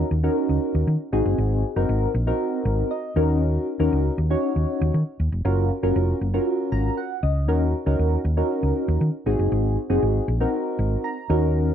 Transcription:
0.11 fingered electric bass D#2
0.23 synth keys C#4 D#4 F#4 A#4
0.49 fingered electric bass C#2
0.75 fingered electric bass D#2
0.87 fingered electric bass D#3
1.12 fingered electric bass G#1, synth keys C4 D#4 F#4 G#4
1.25 fingered electric bass F#1
1.38 fingered electric bass G#1
1.76 fingered electric bass F#1, synth keys C4 D#4 F#4 A#4
1.89 fingered electric bass G#1
2.14 fingered electric bass A#1
2.27 synth keys C4 D#4 F#4 A#4
2.65 fingered electric bass G#1
2.91 synth keys D#5
3.16 fingered electric bass D#2, synth keys C#4 D#4 F#4 A#4
3.79 fingered electric bass D#2, synth keys C#4 D#4 F#4 A#4
3.92 fingered electric bass C#2
4.18 fingered electric bass D#2
4.30 synth keys C#4 D#4 F#4 C#5
4.56 fingered electric bass D#2
4.81 fingered electric bass D#2
4.94 fingered electric bass D#3
5.20 fingered electric bass D#2
5.32 fingered electric bass F1
5.45 fingered electric bass F#1, synth keys C#4 F4 F#4 A#4
5.83 fingered electric bass F#1, synth keys C#4 F4 F#4 A#4
5.96 fingered electric bass F1
6.21 fingered electric bass F#1
6.34 synth keys C#4 F4 F#4 A#4
6.72 fingered electric bass G#1, synth keys A#5
6.97 synth keys F#5
7.23 fingered electric bass C#2, synth keys D#5
7.48 fingered electric bass D#2, synth keys C#4 D#4 F#4 A#4
7.86 fingered electric bass C#2, synth keys C#4 D#4 F#4 A#4
7.99 fingered electric bass D#2
8.25 fingered electric bass D#2
8.37 synth keys C#4 D#4 F#4 A#4
8.63 fingered electric bass C#2
8.88 fingered electric bass D#2
9.01 fingered electric bass D#3
9.26 fingered electric bass G#1, synth keys C4 D#4 F#4 G#4
9.39 fingered electric bass F#1
9.52 fingered electric bass G#1
9.90 fingered electric bass F#1, synth keys C4 D#4 F#4 G#4
10.03 fingered electric bass G#1
10.28 fingered electric bass A#1
10.40 synth keys C4 D#4 F#4 A#4
10.79 fingered electric bass G#1
11.04 synth keys A#5
11.29 fingered electric bass D#2, synth keys C#4 D#4 F#4 A#4

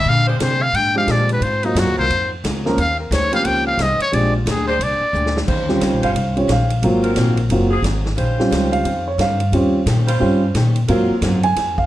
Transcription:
Already playing: muted trumpet E5
0.06 upright bass A#2, steel-string acoustic guitar A#2 G#3 D4 G4, muted trumpet F5
0.28 saxophone section G#3 D4 G4 C5, muted trumpet G#4
0.39 steel-string acoustic guitar A#2 G#3 D4 G4, upright bass C3, muted trumpet C5, snare, hi-hat pedal, ride
0.62 muted trumpet F5
0.73 upright bass G#2, steel-string acoustic guitar A#2 G#3 D4 G4, muted trumpet G5, ride
0.95 grand piano F3 G#3 C4 D4 G4, muted trumpet F5
1.07 upright bass A#2, steel-string acoustic guitar A#2 G#3 D4 G4, snare, hi-hat pedal, ride
1.11 muted trumpet D5
1.29 muted trumpet B4, ride
1.41 upright bass G#2, steel-string acoustic guitar G#2 F#3 C4 F4, muted trumpet C5, ride
1.63 grand piano F#3 A#3 C4 D#4 F4, muted trumpet D#4, ride
1.75 upright bass F#2, steel-string acoustic guitar G#2 F#3 C4 F4, snare, hi-hat pedal, ride
1.79 muted trumpet F#4
1.86 upright bass D#2
1.97 upright bass C2, saxophone section F#3 C4 F4 A#4, muted trumpet C5
2.10 upright bass F2, steel-string acoustic guitar G#2 F#3 C4 F4, ride
2.44 upright bass C#2, steel-string acoustic guitar G#2 F#3 C4 F4, snare, hi-hat pedal, ride
2.65 grand piano F3 A#3 C4 C#4 A#4, snare
2.76 upright bass D#2, steel-string acoustic guitar D#3 C#4 G4 C5, muted trumpet F5, ride
3.00 muted trumpet A#4
3.11 upright bass D2, steel-string acoustic guitar D#3 C#4 G4 C5, muted trumpet C#5, snare, hi-hat pedal, ride
3.32 grand piano F3 A#3 C4 C#4 G4, saxophone section G3 C#4 F4 C5, muted trumpet F5, ride
3.45 upright bass C#2, steel-string acoustic guitar D#3 C#4 G4 C5, muted trumpet G5, ride
3.67 muted trumpet F5
3.78 upright bass C2, steel-string acoustic guitar D#3 C#4 G4, snare, hi-hat pedal, ride
3.82 steel-string acoustic guitar C5, muted trumpet D#5
3.98 muted trumpet C#5, muted upright bass stroke, ride
4.12 upright bass A#1, steel-string acoustic guitar A#2 G#3 D4 G4, grand piano F3 G#3 C4 D4 G4, muted trumpet D5, ride
4.37 muted trumpet F4
4.46 upright bass D2, steel-string acoustic guitar A#2 G#3 D4 G4, snare, hi-hat pedal, ride
4.50 muted trumpet G#4
4.68 saxophone section G#3 D4 G4 C5, muted trumpet C5
4.79 upright bass C2, steel-string acoustic guitar A#2 G#3 D4 G4, ride
4.83 muted trumpet D5
5.00 muted upright bass stroke
5.13 upright bass D2, steel-string acoustic guitar A#2 G#3 D4 G4, hi-hat pedal
5.26 snare
5.37 snare
5.47 upright bass D#2, steel-string acoustic guitar D#3 C#4 G4 C5, saxophone section G3 F4 C5, kick, crash
5.68 grand piano G3 C4 C#4 F4, snare
5.81 upright bass C#2, steel-string acoustic guitar D#3 C#4 G4 C5, snare, hi-hat pedal, ride
5.92 upright bass A#1
6.02 upright bass G1, saxophone section G3 C#4 F4 C5, grand piano F5, ride
6.15 upright bass C2, steel-string acoustic guitar D#3 C#4 G4 C5, ride
6.36 grand piano G3 C4 C#4 F4 C#5, ride
6.47 upright bass A#1, steel-string acoustic guitar D#3 C#4 G4 C5, snare, hi-hat pedal, ride
6.52 grand piano F5
6.70 ride
6.82 upright bass G#1, steel-string acoustic guitar G#2 F#3 C4 F4, grand piano F#3 A#3 C4 F4, ride
7.03 saxophone section F#3 C4 F4 A#4, ride
7.16 upright bass A#1, steel-string acoustic guitar G#2 F#3 C4 F4, snare, hi-hat pedal, ride
7.37 ride
7.49 upright bass F#1, steel-string acoustic guitar G#2 F#3 C4 F4, grand piano F#3 A#3 C4 F4, ride
7.70 saxophone section F#3 C4 F4 G#4
7.82 upright bass G#1, steel-string acoustic guitar G#2 F#3 C4 F4, snare, hi-hat pedal, ride
8.06 snare
8.16 upright bass A#1, steel-string acoustic guitar D#3 C#4 G4 C5, saxophone section G3 F4 C5, ride
8.40 grand piano G3 C4 C#4 F4, snare
8.50 upright bass C#2, steel-string acoustic guitar D#3 C#4 G4 C5, snare, hi-hat pedal, ride
8.72 grand piano F5, ride
8.84 upright bass F2, steel-string acoustic guitar D#3 C#4 G4 C5, ride
9.08 grand piano C#5
9.18 upright bass G2, steel-string acoustic guitar D#3 C#4 G4 C5, grand piano F5, snare, hi-hat pedal, ride
9.40 ride
9.52 upright bass D#2, steel-string acoustic guitar D#3 C#4 G4 C5, grand piano G3 C4 C#4 F4, ride
9.86 upright bass A#2, steel-string acoustic guitar D#3 C#4 G4 C5, snare, hi-hat pedal, ride
10.07 saxophone section G3 C#4 F4 C5, ride
10.20 upright bass G2, steel-string acoustic guitar D#3 C#4 G4 C5, grand piano G3 C4 C#4 F4
10.54 upright bass A#2, steel-string acoustic guitar D#3 C#4 G4 C5, snare, hi-hat pedal, ride
10.76 ride
10.88 upright bass G#2, steel-string acoustic guitar G#2 F#3 C4 F4, grand piano F#3 A#3 C4 F4, saxophone section F#3 C4 F4 A#4, ride
11.10 muted upright bass stroke
11.21 upright bass F#2, steel-string acoustic guitar G#2 F#3 C4 F4, snare, hi-hat pedal, ride
11.43 grand piano G#5, ride
11.56 upright bass F2, steel-string acoustic guitar G#2 F#3 C4 F4, snare, ride
11.78 grand piano F5, kick

